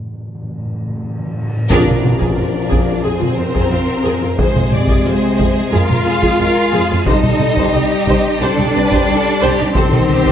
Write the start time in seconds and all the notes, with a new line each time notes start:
0.06 A2
0.14 A2
0.20 A2
0.27 A2
0.35 A2
0.43 A2
0.50 A2
0.58 A2
0.65 A2
0.73 A2
0.81 A2
0.88 A2
0.95 A2
1.03 A2
1.10 A2
1.18 A2
1.25 A2
1.33 A2
1.41 A2
1.49 A2
1.56 A2
1.70 F2 F3 D4 G#4 A#4 D5, taiko, tam-tam
1.86 F2 F4, taiko mid
2.03 F2 C4, taiko mid
2.19 F2 G#4, taiko
2.37 F2 F4
2.70 F2 G#4, taiko
3.04 F2 F3 C4 G#4 C5
3.21 F2 F4, taiko mid
3.37 F2 C4 A#4
3.55 F2 G#4, taiko
3.71 F2 F4
4.05 F2 G#4
4.22 F2 F4
4.38 F2 C3 G#3 G#4 C5, taiko
4.55 F2 F4, taiko mid
4.72 F2 C4 D5, taiko mid
4.89 F2 G#4, taiko
5.06 F2 F4 C5
5.38 F2 G#4, taiko
5.72 F2 G#3 F4 G#4 A#4 F5
5.90 F2 F4, taiko mid
6.06 F2 C4 G#4
6.22 F2 G#4, taiko
6.38 F2 F4 A#4
6.73 F2 G#4
6.90 F2 F4
7.06 C2 G3 D#4 G4 A4 C5 D#5, taiko
7.23 C2 D#4 G4, taiko mid
7.40 C2 C4 D#4, taiko mid
7.57 C2 G4 C5, taiko
7.74 C2 D#4 G4
8.07 C2 G4 C5, taiko
8.41 C2 G3 D4 G4 A4 C5 D5
8.57 C2 D#4 G4, taiko mid
8.75 C2 C4 D#4 B4
8.91 C2 G4 C5, taiko
9.07 C2 D#4 G4 A4
9.42 C2 G4 C5
9.59 C2 D#4 G4
9.74 C2 D#3 C4 G4 A4 C5, taiko
9.92 C2 D#4 G4, taiko mid
10.09 C2 C4 D#4 G4, taiko mid
10.25 C2 G4 C5, taiko